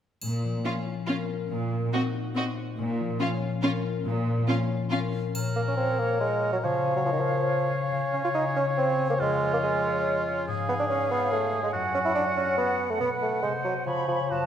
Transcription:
0.22 A#2, triangle
0.44 F3
0.65 C#4 F4 F5
0.86 F4
1.07 C#4 F4 A#4 F5
1.30 F4
1.51 A#2
1.72 A#3
1.93 C4 D#4 F#4 D#5
2.15 F#4
2.35 C4 F#4 C5 D#5
2.57 F#4
2.79 A#2
2.99 F3
3.20 C#4 F4 F5
3.42 F4
3.63 C#4 F4 A#4 F5
3.84 F4
4.05 A#2
4.27 F3
4.48 C#4 F4 F5
4.70 F4
4.91 C#4 F4 A#4 F5
5.13 F4
5.35 A#2 A#4 C#5, triangle
5.56 A#3 C#4
5.68 C#4
5.77 C4 A#4
5.99 A#3 C#5
6.20 G#3 F4
6.42 C#4
6.53 F#3
6.63 C#3 F3 C#5 F5
6.85 C#4
6.96 F#3
7.05 F3 A#4
7.13 D#3
7.20 F3
7.27 C#5
7.49 F4
7.70 C#4
7.92 C#3
8.12 C#4
8.24 F4
8.34 D#4 G#4
8.55 C#4 C#5
8.77 C4 F4
8.99 C#4
9.10 A#3
9.20 F2 G#3 F4 C#5
9.41 C#4
9.53 A#3
9.63 G#3 G#4
9.84 C#5
10.05 F4
10.27 C#4
10.47 G#2 G#4 F5
10.68 B3 C#4
10.80 D4
10.90 C#4 B4
11.10 B3 C#5
11.31 A3 F4
11.53 C#4
11.63 G#3
11.73 F#2 F#4 F#5
11.94 C#4
12.05 E4
12.15 D4 A4
12.36 C#4 C#5
12.57 B3 F#4
12.79 C#4
12.90 A3
13.00 B2 B3 B4
13.21 A3 F#4 B4
13.43 C3 G#3 C5
13.64 F#3 F#4 D#5
13.86 C#3 F3 C#5 B5
14.07 F3 G#4 C#5
14.30 F#2 F3 F#4 A5

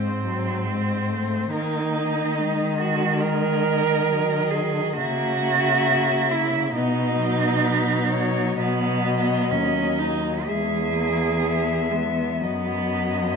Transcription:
Already playing: G#2 G#3 C4 C5
0.25 F#3
0.66 G#3 C5
1.10 A3
1.51 D#3 A#3 D#4 A#4
1.94 D#5
2.38 G#3
2.78 F#4
3.20 A#4 D#5
4.10 F#3
4.50 G#4
4.96 C#3 A#3 F#4 E5
5.42 A#3
6.31 E4
6.73 B2 B3 D#4 D#5
7.20 F#3
7.64 B4
8.10 C#5
8.56 B2 B3 D#5
9.51 D#2 C#4
9.99 D#4
10.47 E2 G#3 G#4 E5
10.95 A#3
11.41 B3 E5
11.90 G#3 B3
12.41 F#2 F#3 B3 D#5

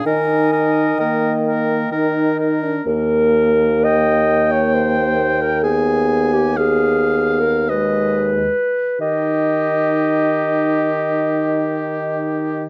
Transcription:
0.06 D#3 D#4 A#4 D#5 G#5
0.52 D#4 A#4
0.98 D#3 A#3 A#4 G5
1.46 A#4
1.92 D#3 D#4 A#4
2.39 A#4
2.63 D4
2.85 D#2 A#3 A#4
3.84 D#5 G5
4.52 C#5
4.73 C5
5.41 A#4
5.63 B3 G#4 G#5
6.33 G4
6.57 B3 G#4 F5
7.40 A#4
7.69 G#3 B4 D#5
9.00 D#3 D#4 G4 D#5

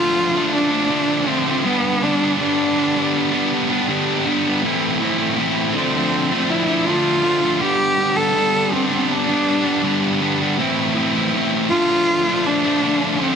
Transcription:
Already playing: D3 D4 F4
0.00 F3 A3
0.35 F3 A3 D4
0.54 D4
0.71 F3 A3 D4
0.89 D3 F3 A3 D4
1.26 D3 F3 A3 C4 D4
1.46 F3 A3 D4
1.64 G2 D3 G3 B3 D4
2.02 D3 G3 B3 D4
2.21 G3 B3 D4
2.40 G2 D3 G3 B3 D4
2.76 D3 G3 B3 D4
2.96 G3 B3 D4
3.31 G3 B3 D4
3.69 G3 B3 D4
3.88 G2 D3 G3 B3 D4
4.26 D3 G3 B3 D4
4.45 G3 B3 D4
4.63 A2 E3 A3 C4 E4
5.00 E3 A3 C4 E4
5.18 A3 C4 E4
5.37 A2 E3 A3 C4 E4
5.74 D3 F3 A3 C4 D4
5.95 F3 A3 D4
6.31 F3 A3 D4
6.49 E4
6.68 F3 A3 D4
6.86 D3 F3 A3 D4 F4
7.23 D3 F3 A3 D4
7.41 F3 A3 D4
7.59 G2 D3 G3 B3 D4 G4
7.97 D3 G3 B3 D4
8.16 G3 B3 D4 A4
8.34 G2 D3 G3 B3 D4
8.71 D3 G3 B3 C4 D4
8.89 G3 B3 D4
9.11 D4
9.27 G3 B3 D4
9.62 G3 B3 D4
9.82 G2 D3 G3 B3 D4
10.20 D3 G3 B3 D4
10.40 G3 B3 D4
10.58 A2 E3 A3 C4 E4
10.95 E3 A3 C4 E4
11.15 A3 C4 E4
11.34 A2 E3 A3 C4 E4
11.69 D3 F3 A3 F4
11.74 D4
11.89 F3 A3 D4
12.27 F3 A3 D4
12.46 D4
12.63 F3 A3 D4
12.82 D3 F3 A3 D4
13.18 D3 F3 A3 C4 D4

